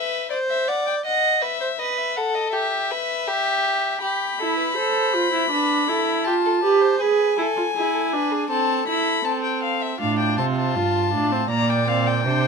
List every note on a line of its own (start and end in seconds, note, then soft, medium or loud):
0.00 0.30 B4 medium
0.00 0.30 E5 medium
0.30 0.69 C5 medium
0.30 0.38 D5 medium
0.50 0.70 E5 medium
0.68 1.05 D5 medium
0.68 0.86 F#5 medium
0.87 0.94 G5 medium
1.05 1.43 D#5 medium
1.05 1.42 F#5 medium
1.42 1.60 B4 medium
1.42 1.81 E5 medium
1.61 1.68 C5 medium
1.79 2.18 B4 medium
1.79 2.00 D#5 medium
1.98 2.18 E5 medium
2.16 2.54 A4 medium
2.16 2.36 F#5 medium
2.35 2.53 D#5 medium
2.53 2.92 G4 medium
2.53 3.99 E5 medium
2.91 3.29 B4 medium
3.27 4.01 G4 medium
4.02 4.41 G4 medium
4.02 6.26 B5 medium
4.39 4.74 E4 medium
4.39 4.57 A4 medium
4.57 4.78 B4 medium
4.76 5.15 A4 medium
4.76 5.50 C5 medium
5.13 5.32 F4 medium
5.32 5.50 E4 medium
5.50 5.90 D4 medium
5.50 5.87 B4 medium
5.88 6.28 E4 medium
5.88 6.25 A4 medium
6.25 6.63 F4 medium
6.25 6.34 G4 medium
6.25 7.00 A5 medium
6.45 6.52 A4 medium
6.63 7.00 G4 medium
6.63 6.82 B4 medium
6.81 7.02 C5 medium
7.00 7.37 G#4 medium
7.00 7.37 B4 medium
7.00 8.47 G#5 medium
7.38 7.45 E4 medium
7.38 7.74 A4 medium
7.56 7.64 F4 medium
7.75 8.14 E4 medium
7.75 7.93 G#4 medium
7.94 8.01 A4 medium
8.13 8.50 D4 medium
8.13 8.33 B4 medium
8.31 8.50 G#4 medium
8.50 8.87 C4 medium
8.50 9.97 A4 medium
8.50 8.87 A5 medium
8.88 9.25 E4 medium
8.88 9.27 B5 medium
9.25 9.99 C4 medium
9.25 9.43 A5 medium
9.44 9.62 G5 medium
9.63 9.83 F5 medium
9.82 10.00 E5 medium
10.00 10.40 A2 medium
10.00 10.40 D4 medium
10.00 11.46 F4 medium
10.00 10.18 F5 medium
10.19 10.37 G5 medium
10.38 10.77 C3 medium
10.38 10.77 C4 medium
10.38 10.45 A5 medium
10.56 11.48 A5 medium
10.76 11.14 G2 medium
10.76 11.12 F4 medium
11.13 11.50 A2 medium
11.13 11.33 D4 medium
11.32 11.50 C4 medium
11.50 12.27 A#2 medium
11.50 11.87 A#3 medium
11.50 12.24 D5 medium
11.50 11.71 A#5 medium
11.69 11.89 G5 medium
11.88 12.25 C4 medium
11.88 12.09 F5 medium
12.07 12.47 G5 medium
12.25 12.47 C3 medium
12.25 12.47 D4 medium
12.25 12.47 C5 medium